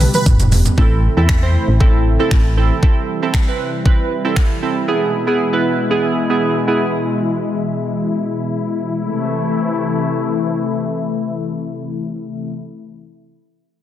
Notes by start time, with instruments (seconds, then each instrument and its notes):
Already playing: analog synth pad E3 G3 B3 G4
0.00 open hi-hat, mid tom, shaker
0.14 supersaw synth B4, closed hi-hat, mid tom, shaker
0.26 fm bass E1, kick, closed hi-hat, mid tom, shaker
0.40 closed hi-hat, mid tom, shaker
0.52 floor tom, open hi-hat, shaker
0.66 closed hi-hat, floor tom, shaker
0.78 fm bass A1, analog synth pad C3 E3 A3 E4, synth keys C4 E4 A4, kick
1.17 fm bass E2, synth keys C4 E4 A4
1.29 finger snap, kick
1.42 synth keys C4 E4 C5
1.68 fm bass A1
1.80 synth keys C4 E4 A4, kick
2.19 synth keys C4 E4 A4
2.31 fm bass A1, finger snap, kick
2.57 synth keys C4 E4 A4
2.82 analog synth pad G3, synth keys C4 E4 A4, kick
3.22 synth keys C4 E4 A4
3.34 finger snap, kick
3.48 synth keys C4 E4 B4
3.85 synth keys C4 E4 B4, kick
4.25 synth keys C4 E4 A4
4.36 finger snap, kick
4.62 synth keys C4 E4 A4
4.87 analog synth pad B2 G#3, synth keys B3 E4 G#4
5.27 synth keys B3 E4 G#4
5.53 synth keys B3 E4 B4
5.90 synth keys B3 E4 G#4
6.30 synth keys B3 E4 G#4
6.67 synth keys B3 E4 G#4
8.98 analog synth pad C3 E3 A3 E4